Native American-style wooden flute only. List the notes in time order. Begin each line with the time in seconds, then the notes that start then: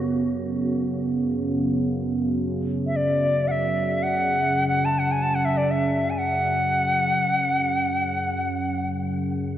2.87 E5
2.96 D5
3.48 E5 F#5
4.03 F#5
4.68 F#5
4.85 A5
4.99 F#5
5.12 G#5
5.22 A5
5.35 F#5
5.45 E5
5.57 D5
5.71 E5
6.10 G#5
6.19 F#5